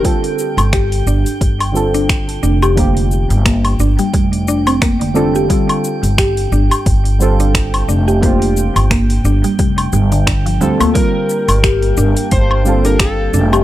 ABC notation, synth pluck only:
X:1
M:4/4
L:1/16
Q:"Swing 16ths" 1/4=88
K:Gm
V:1 name="Synth pluck"
G, z3 G2 D z4 D3 D G | B, z3 B, z D G, G,2 D C B, D, D G | G, z3 G2 D z4 D3 D G | B, z3 B, z D G, G, z G, D, D, F, G, B, |
G, z3 G2 D z4 D3 D G |]